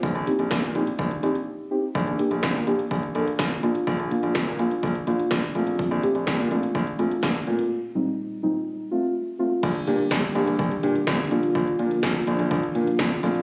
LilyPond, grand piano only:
\new Staff \with { instrumentName = "Grand piano" } { \clef bass \time 4/4 \key bes \major \tempo 4 = 125 bes,,16 bes,,16 r16 bes,,16 bes,,16 bes,16 bes,,16 r16 bes,,16 r16 bes,,16 r4 r16 | bes,,16 bes,,16 r16 bes,,16 bes,,16 bes,16 bes,,16 r16 bes,,16 r16 bes,,16 r16 bes,,16 r16 bes,,16 r16 | bes,,16 bes,,16 r16 bes,,16 bes,,16 bes,16 bes,,16 r16 bes,,16 r16 bes,,16 r16 bes,,16 r16 bes,,8~ | bes,,16 bes,,16 r16 bes,,16 bes,,16 bes,16 bes,,16 r16 bes,,16 r16 bes,,16 r16 bes,,16 r16 bes,16 r16 |
r1 | bes,,16 r16 bes,16 r16 bes,,16 r16 bes,,16 bes,,16 bes,,16 r16 bes,16 r16 bes,,16 r16 bes,,16 r16 | bes,,16 r16 bes,16 r16 bes,,16 r16 bes,,16 bes,,16 bes,,16 r16 bes,16 r16 bes,,16 r16 bes,,8 | }